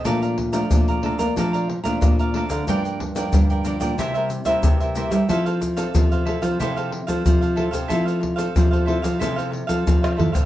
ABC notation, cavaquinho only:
X:1
M:4/4
L:1/16
Q:1/4=92
K:F
V:1 name="Cavaquinho"
[Adfb] [dfb] z [dfb]2 [dfb] [Adfb] [dfb] [Adfb] [dfb] z [dfb]2 [dfb] [Adfb] [dfb] | [FBdg] [Bdg] z [Bdg]2 [Bdg] [FBdg] [Bdg] [EBce] [Bce] z [Bce]2 [Bce] [EBce] [Bce] | [EAcf] [Acf] z [Acf]2 [Acf] [EAcf] [Acf] [EAcf] [Acf] z [Acf]2 [Acf] [EAcf] [Acf] | [EAcf] [Acf] z [Acf]2 [Acf] [EAcf] [Acf] [EAcf] [Acf] z [Acf]2 [Acf] [EAcf] [Acf] |]